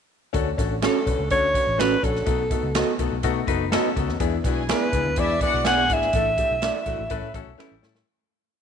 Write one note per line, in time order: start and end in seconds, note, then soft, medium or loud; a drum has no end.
0.33 0.53 D2 loud
0.33 4.17 A3 medium
0.33 0.48 C#4 loud
0.33 2.26 C#4 medium
0.33 0.48 D4 medium
0.33 2.26 D4 medium
0.33 0.48 F#4 loud
0.33 4.17 F#4 medium
0.33 0.48 A4 loud
0.33 kick loud
0.33 closed hi-hat medium
0.57 0.86 A1 medium
0.57 0.72 C#4 medium
0.57 0.73 D4 medium
0.57 0.73 F#4 medium
0.57 0.73 A4 medium
0.57 kick medium
0.57 snare soft
0.57 closed hi-hat medium
0.82 0.97 C#4 medium
0.82 0.97 D4 medium
0.82 0.97 F#4 medium
0.82 0.97 A4 medium
0.82 0.98 A4 medium
0.82 1.29 A4 medium
0.82 0.98 C#5 medium
0.82 finger snap medium
0.82 snare loud
0.82 closed hi-hat medium
1.06 1.16 B1 medium
1.06 1.21 C#4 medium
1.06 1.21 D4 medium
1.06 1.21 F#4 medium
1.06 1.21 B4 medium
1.06 kick medium
1.06 closed hi-hat medium
1.19 1.28 C#2 medium
1.30 1.58 D2 medium
1.30 1.45 C#4 medium
1.30 1.45 D4 medium
1.30 1.45 F#4 medium
1.30 1.46 A4 medium
1.30 1.81 C#5 loud
1.30 kick medium
1.30 closed hi-hat medium
1.54 1.69 C#4 medium
1.54 1.69 D4 medium
1.54 1.69 F#4 medium
1.54 1.69 B4 medium
1.54 kick medium
1.54 closed hi-hat medium
1.67 1.94 A1 medium
1.78 1.93 C#4 medium
1.78 1.94 C#4 medium
1.78 1.93 D4 medium
1.78 1.93 F#4 medium
1.78 1.94 F#4 medium
1.78 1.93 A4 medium
1.78 1.94 A4 medium
1.78 2.06 B4 medium
1.78 1.94 C#5 medium
1.78 finger snap medium
1.78 snare medium
1.78 closed hi-hat medium
2.03 2.21 A#1 medium
2.03 2.17 C#4 medium
2.03 2.17 D4 medium
2.03 2.17 F#4 medium
2.03 2.17 A4 medium
2.03 3.00 A4 medium
2.03 kick medium
2.03 closed hi-hat medium
2.15 snare soft
2.26 2.55 B1 medium
2.26 2.41 B3 medium
2.26 6.10 B3 medium
2.26 2.41 D#4 medium
2.26 4.19 D#4 medium
2.26 2.41 F#4 medium
2.26 2.41 A4 medium
2.26 kick loud
2.26 closed hi-hat medium
2.51 2.65 B3 medium
2.51 2.65 D#4 medium
2.51 2.66 F#4 medium
2.51 2.66 A4 medium
2.51 kick medium
2.51 closed hi-hat medium
2.63 2.81 C#2 medium
2.75 2.89 B3 medium
2.75 2.90 B3 medium
2.75 2.90 D#4 medium
2.75 2.90 F#4 medium
2.75 2.90 A4 medium
2.75 2.91 D#5 medium
2.75 finger snap medium
2.75 snare loud
2.75 closed hi-hat medium
2.99 3.08 B1 medium
2.99 3.14 B3 medium
2.99 3.14 D#4 medium
2.99 3.14 F#4 medium
2.99 3.14 A4 medium
2.99 kick medium
2.99 closed hi-hat medium
3.11 3.21 B1 medium
3.23 3.42 B2 loud
3.23 3.47 A3 medium
3.23 3.38 B3 loud
3.23 3.38 D#4 medium
3.23 3.38 F#4 loud
3.23 3.47 F#4 medium
3.23 3.38 A4 loud
3.23 kick medium
3.23 closed hi-hat medium
3.47 3.75 F#1 medium
3.47 3.62 B3 medium
3.47 3.62 D#4 medium
3.47 3.71 D#4 medium
3.47 3.62 F#4 medium
3.47 3.62 A4 medium
3.47 3.71 B4 medium
3.47 kick medium
3.47 closed hi-hat medium
3.72 3.87 B3 medium
3.72 3.87 B3 loud
3.72 4.18 C#4 medium
3.72 3.87 D#4 medium
3.72 3.87 F#4 medium
3.72 4.18 A4 medium
3.72 3.87 A4 loud
3.72 3.88 A4 medium
3.72 3.88 D#5 medium
3.72 finger snap medium
3.72 snare medium
3.72 closed hi-hat medium
3.96 4.06 C#2 medium
3.96 4.10 B3 medium
3.96 4.11 D#4 medium
3.96 4.10 F#4 medium
3.96 4.11 A4 medium
3.96 kick medium
3.96 closed hi-hat medium
4.08 4.17 D#2 medium
4.08 snare soft
4.20 4.38 E2 medium
4.20 6.12 G#3 medium
4.20 4.35 B3 loud
4.20 4.34 D4 loud
4.20 7.08 D4 medium
4.20 4.35 E4 loud
4.20 8.03 E4 medium
4.20 4.35 G#4 loud
4.20 kick loud
4.20 closed hi-hat medium
4.44 4.72 B1 medium
4.44 4.59 B3 medium
4.44 4.59 D4 medium
4.44 4.59 E4 medium
4.44 4.59 F#4 medium
4.44 4.90 G#4 medium
4.44 4.90 G#5 medium
4.44 kick medium
4.44 snare soft
4.44 closed hi-hat medium
4.69 4.83 B3 medium
4.69 4.83 D4 medium
4.69 4.84 E4 medium
4.69 4.83 E4 medium
4.69 4.84 G#4 medium
4.69 5.21 B4 medium
4.69 4.84 D5 medium
4.69 finger snap medium
4.69 snare loud
4.69 closed hi-hat medium
4.93 5.02 C#2 medium
4.93 5.08 B3 medium
4.93 5.08 D4 medium
4.93 5.08 E4 medium
4.93 5.08 G#4 medium
4.93 kick medium
4.93 closed hi-hat medium
5.05 5.17 D2 medium
5.16 5.44 E2 medium
5.16 5.32 B3 medium
5.16 5.32 D4 medium
5.16 5.32 E4 medium
5.16 5.37 E4 medium
5.16 5.32 G#4 loud
5.16 5.42 D5 medium
5.16 5.37 E5 medium
5.16 kick medium
5.16 closed hi-hat medium
5.41 5.56 B3 medium
5.41 5.56 D4 medium
5.41 5.56 E4 medium
5.41 5.61 F#4 loud
5.41 5.56 G#4 medium
5.41 5.68 D5 medium
5.41 5.61 F#5 loud
5.41 kick medium
5.41 closed hi-hat medium
5.54 5.90 B1 medium
5.65 5.80 B3 medium
5.65 5.80 D4 medium
5.65 5.80 E4 medium
5.65 6.00 G#4 medium
5.65 5.80 G#4 loud
5.65 5.81 G#4 medium
5.65 5.81 D5 medium
5.65 5.95 F#5 loud
5.65 6.00 G#5 medium
5.65 finger snap medium
5.65 snare loud
5.65 closed hi-hat medium
5.90 6.08 G#1 medium
5.90 6.04 B3 medium
5.90 6.04 D4 medium
5.90 6.04 E4 medium
5.90 6.05 G#4 medium
5.90 7.84 E5 loud
5.90 kick medium
5.90 closed hi-hat medium
6.02 snare soft
6.13 6.41 A1 loud
6.13 8.05 E3 medium
6.13 6.28 A3 medium
6.13 7.10 A3 medium
6.13 6.29 D4 medium
6.13 6.29 E4 medium
6.13 6.29 A4 loud
6.13 kick loud
6.13 closed hi-hat medium
6.38 6.52 A3 medium
6.38 6.52 D4 medium
6.38 6.53 E4 medium
6.38 6.52 G4 medium
6.38 kick medium
6.38 closed hi-hat medium
6.51 6.69 B1 medium
6.61 6.76 A3 medium
6.61 6.76 D4 medium
6.61 6.77 D4 medium
6.61 6.76 E4 medium
6.61 6.77 E4 medium
6.61 6.76 A4 medium
6.61 6.77 A4 medium
6.61 6.78 D5 medium
6.61 finger snap medium
6.61 snare loud
6.61 closed hi-hat medium
6.86 6.95 A1 medium
6.86 7.00 A3 medium
6.86 7.01 D4 medium
6.86 7.01 E4 medium
6.86 7.01 F#4 medium
6.86 kick medium
6.86 closed hi-hat medium
6.99 7.08 A1 medium
7.10 7.20 A1 medium
7.10 7.24 A3 loud
7.10 8.06 A3 medium
7.10 7.25 C#4 medium
7.10 8.06 C#4 medium
7.10 7.25 E4 loud
7.10 7.25 A4 loud
7.10 7.34 B4 medium
7.10 kick medium
7.10 closed hi-hat medium
7.22 7.31 A2 medium
7.34 7.43 A1 medium
7.34 7.49 A3 medium
7.34 7.49 C#4 medium
7.34 7.58 C#4 medium
7.34 7.49 E4 medium
7.34 7.49 F#4 medium
7.34 7.58 A4 medium
7.34 kick medium
7.34 closed hi-hat medium
7.47 7.56 B1 medium
7.58 8.05 G3 medium
7.58 7.72 A3 loud
7.58 7.73 C#4 medium
7.58 7.73 E4 medium
7.58 7.74 E4 medium
7.58 8.05 E4 medium
7.58 7.74 A4 medium
7.58 7.73 B4 loud
7.58 7.74 C#5 medium
7.58 finger snap medium
7.58 snare medium
7.71 7.80 A1 medium
7.82 8.01 A2 medium
7.82 7.97 A3 medium
7.82 7.97 C#4 medium
7.82 7.97 E4 medium
7.82 7.97 A4 medium
7.82 snare medium
7.95 snare medium